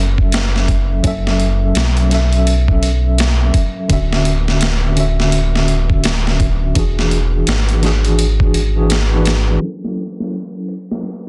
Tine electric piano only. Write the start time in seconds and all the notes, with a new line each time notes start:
Already playing: F#3 C#4 A4 E5
1.03 F#3 C#4 A4
1.07 E5
2.10 F#3 C#4 A4
2.14 E5
3.88 D3 C#4 F#4
3.93 E5
4.96 D3 C#4 F#4
5.00 E5
6.75 E3 D4 F#4
6.79 G#4
7.82 E3 D4 F#4
7.86 G#4
8.76 E3 D4 F#4 G#4
9.11 E3 D4 F#4 B4
9.60 F#3 C#4